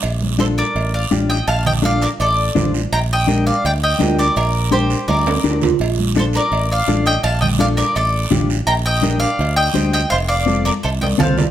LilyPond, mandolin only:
\new Staff \with { instrumentName = "Mandolin" } { \time 4/4 \key d \phrygian \tempo 4 = 167 r4 <a' c''>8 <bes' d''>4 <d'' f''>4 <ees'' g''>8 | <f'' a''>8 <ees'' g''>8 <d'' f''>8 <bes' d''>8 <a' d''>4. r8 | <g'' bes''>8 <ees'' g''>4 <d'' f''>8 <d'' g''>8 <ees'' g''>4 <bes' d''>8 | <bes' d''>4 <g' c''>4 <bes' d''>4. r8 |
r4 <a' c''>8 <bes' d''>4 <d'' f''>4 <ees'' g''>8 | <f'' a''>8 <ees'' g''>8 <d'' f''>8 <bes' d''>8 <a' d''>4. r8 | <g'' bes''>8 <ees'' g''>4 <d'' f''>4 <ees'' g''>4 <ees'' g''>8 | <c'' f''>8 <d'' f''>4 <bes' d''>8 <a' c''>8 <ees'' g''>8 <f'' a''>8. r16 | }